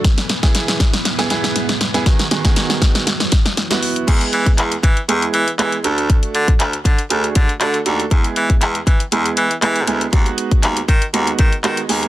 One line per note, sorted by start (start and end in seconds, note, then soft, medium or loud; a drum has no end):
0.04 2.04 E3 medium
0.04 3.04 G#3 medium
0.04 4.04 B3 medium
0.04 2.04 G#4 medium
0.04 4.04 B4 loud
0.04 kick loud
0.04 snare loud
0.04 closed hi-hat medium
0.18 snare loud
0.18 closed hi-hat medium
0.29 snare loud
0.29 closed hi-hat medium
0.43 0.91 B3 medium
0.43 0.91 E4 medium
0.43 0.91 G#4 loud
0.43 kick medium
0.43 snare loud
0.43 closed hi-hat medium
0.55 snare loud
0.55 closed hi-hat loud
0.68 snare loud
0.68 closed hi-hat medium
0.80 kick medium
0.80 snare loud
0.80 closed hi-hat medium
0.93 snare loud
0.93 closed hi-hat medium
1.05 snare loud
1.05 closed hi-hat medium
1.18 1.26 B3 loud
1.18 1.26 E4 medium
1.18 1.26 G#4 loud
1.18 snare loud
1.18 closed hi-hat medium
1.30 1.71 B3 loud
1.30 1.71 E4 loud
1.30 1.71 G#4 loud
1.30 snare loud
1.30 closed hi-hat medium
1.44 snare loud
1.44 closed hi-hat medium
1.56 snare loud
1.56 closed hi-hat medium
1.69 snare loud
1.69 closed hi-hat medium
1.81 snare loud
1.81 closed hi-hat medium
1.94 2.02 B3 loud
1.94 2.02 E4 medium
1.94 2.02 G#4 loud
1.94 snare loud
1.94 closed hi-hat medium
2.06 2.23 D#3 medium
2.06 3.06 D#3 medium
2.06 2.23 B3 medium
2.06 4.06 F#4 medium
2.06 2.23 F#4 medium
2.06 2.23 G#4 loud
2.06 kick loud
2.06 snare loud
2.06 closed hi-hat medium
2.19 snare loud
2.19 closed hi-hat medium
2.31 2.40 D#3 medium
2.31 2.40 B3 medium
2.31 2.40 F#4 medium
2.31 2.40 G#4 medium
2.31 snare loud
2.31 closed hi-hat medium
2.44 3.07 D#3 loud
2.44 3.07 B3 loud
2.44 3.07 F#4 medium
2.44 3.07 G#4 loud
2.44 kick medium
2.44 snare loud
2.44 closed hi-hat medium
2.56 snare loud
2.56 closed hi-hat loud
2.70 snare loud
2.70 closed hi-hat medium
2.82 kick loud
2.82 snare loud
2.82 closed hi-hat medium
2.95 snare loud
2.95 closed hi-hat medium
3.07 4.07 E3 medium
3.07 4.07 F#3 medium
3.07 snare loud
3.07 closed hi-hat medium
3.20 snare loud
3.20 closed hi-hat medium
3.32 kick loud
3.32 snare loud
3.32 closed hi-hat medium
3.46 snare loud
3.46 closed hi-hat medium
3.57 snare loud
3.57 closed hi-hat medium
3.70 4.06 B3 medium
3.70 4.06 E4 medium
3.70 4.08 F#4 medium
3.70 snare loud
3.70 closed hi-hat medium
3.83 open hi-hat medium
3.96 closed hi-hat medium
4.07 4.24 E2 loud
4.07 4.72 G#3 medium
4.07 4.72 B3 medium
4.07 4.72 E4 medium
4.07 4.72 G#4 loud
4.07 kick loud
4.07 closed hi-hat medium
4.07 crash loud
4.21 closed hi-hat medium
4.33 4.49 E3 loud
4.33 closed hi-hat medium
4.46 kick medium
4.46 closed hi-hat medium
4.58 4.75 E2 loud
4.58 clap loud
4.58 closed hi-hat loud
4.72 closed hi-hat medium
4.83 5.00 E3 loud
4.83 kick loud
4.83 closed hi-hat medium
4.97 closed hi-hat medium
5.08 5.25 E2 loud
5.08 5.41 G#3 medium
5.08 5.41 B3 medium
5.08 5.41 E4 medium
5.08 5.41 G#4 medium
5.08 closed hi-hat medium
5.22 closed hi-hat medium
5.34 5.50 E3 loud
5.34 closed hi-hat medium
5.48 closed hi-hat medium
5.59 5.76 E3 loud
5.59 5.75 G#3 medium
5.59 5.76 B3 medium
5.59 5.76 E4 medium
5.59 5.76 G#4 loud
5.59 clap loud
5.59 closed hi-hat medium
5.72 closed hi-hat medium
5.84 6.17 D2 loud
5.84 6.65 A3 loud
5.84 6.65 D4 medium
5.84 6.65 F#4 medium
5.84 6.65 A4 loud
5.84 closed hi-hat medium
5.98 closed hi-hat medium
6.10 kick loud
6.10 closed hi-hat medium
6.23 closed hi-hat medium
6.35 6.51 D3 loud
6.35 closed hi-hat medium
6.48 kick loud
6.48 closed hi-hat medium
6.60 6.76 D2 loud
6.60 clap loud
6.60 closed hi-hat loud
6.73 closed hi-hat medium
6.85 7.01 D3 loud
6.85 kick medium
6.85 closed hi-hat medium
6.99 closed hi-hat medium
7.10 7.27 D2 loud
7.10 7.43 A3 medium
7.10 7.43 D4 medium
7.10 7.43 F#4 medium
7.10 7.43 G#4 loud
7.10 closed hi-hat medium
7.24 closed hi-hat medium
7.35 7.52 D3 loud
7.35 kick loud
7.35 closed hi-hat medium
7.49 closed hi-hat medium
7.61 7.77 D3 loud
7.61 7.77 A3 medium
7.61 7.77 D4 medium
7.61 7.77 F#4 medium
7.61 7.77 A4 loud
7.61 clap loud
7.61 closed hi-hat medium
7.74 closed hi-hat medium
7.86 8.02 D#2 loud
7.86 8.02 A3 medium
7.86 8.02 D4 medium
7.86 8.03 F#4 medium
7.86 8.03 A4 loud
7.86 closed hi-hat medium
8.00 closed hi-hat medium
8.11 8.28 E2 loud
8.11 8.76 G#3 medium
8.11 8.76 B3 medium
8.11 8.76 E4 medium
8.11 8.76 G#4 loud
8.11 kick loud
8.11 closed hi-hat medium
8.24 closed hi-hat medium
8.36 8.53 E3 loud
8.36 closed hi-hat medium
8.50 kick loud
8.50 closed hi-hat medium
8.61 8.78 E2 loud
8.61 clap loud
8.61 closed hi-hat loud
8.75 closed hi-hat medium
8.87 9.03 E3 loud
8.87 kick medium
8.87 closed hi-hat medium
9.00 closed hi-hat medium
9.12 9.28 E2 loud
9.12 9.44 G#3 medium
9.12 9.44 B3 medium
9.12 9.45 E4 medium
9.12 9.45 G#4 medium
9.12 closed hi-hat medium
9.26 closed hi-hat medium
9.37 9.54 E3 loud
9.37 closed hi-hat medium
9.51 closed hi-hat medium
9.62 9.89 E3 loud
9.62 9.79 G#3 medium
9.62 9.79 B3 medium
9.62 9.79 E4 medium
9.62 9.79 G#4 loud
9.62 clap loud
9.62 closed hi-hat medium
9.76 closed hi-hat medium
9.87 10.04 D2 loud
9.87 10.04 G#3 medium
9.87 10.04 B3 medium
9.87 10.04 E4 medium
9.87 10.04 G#4 loud
9.87 closed hi-hat medium
10.01 closed hi-hat medium
10.13 10.29 D#2 loud
10.13 10.77 G#3 medium
10.13 10.78 B3 medium
10.13 10.78 D#4 medium
10.13 10.78 F#4 loud
10.13 kick loud
10.13 closed hi-hat medium
10.26 closed hi-hat medium
10.38 closed hi-hat medium
10.51 kick medium
10.51 closed hi-hat medium
10.63 10.80 D#2 loud
10.63 clap loud
10.63 closed hi-hat loud
10.77 closed hi-hat medium
10.88 11.05 D#3 loud
10.88 kick medium
10.88 closed hi-hat medium
11.02 closed hi-hat medium
11.13 11.30 D#2 loud
11.13 11.46 G#3 medium
11.13 11.46 B3 medium
11.13 11.46 D#4 medium
11.13 11.46 F#4 medium
11.13 closed hi-hat medium
11.27 closed hi-hat medium
11.39 11.55 D#3 loud
11.39 kick loud
11.39 closed hi-hat medium
11.53 closed hi-hat medium
11.64 11.81 D#3 loud
11.64 11.80 G#3 medium
11.64 11.81 B3 medium
11.64 11.81 D#4 medium
11.64 11.81 F#4 loud
11.64 clap loud
11.64 closed hi-hat medium
11.77 closed hi-hat medium
11.89 12.06 D#2 loud
11.89 12.06 G#3 medium
11.89 12.06 B3 medium
11.89 12.06 D#4 medium
11.89 12.06 G#4 loud
11.89 open hi-hat medium
12.03 closed hi-hat medium